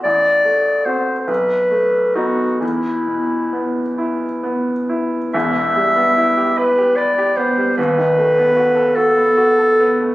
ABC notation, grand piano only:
X:1
M:6/8
L:1/16
Q:3/8=48
K:Em
V:1 name="Grand piano"
A,,,2 A,2 [CF]2 B,,,2 A,2 [B,^D]2 | E,,2 B,,2 B,2 E2 B,2 E2 | [E,,,E,,] B,, G, B, E G B G B G B, G, | [^D,,,^D,,] ^D, A, B, F A F B, F A B, A, |]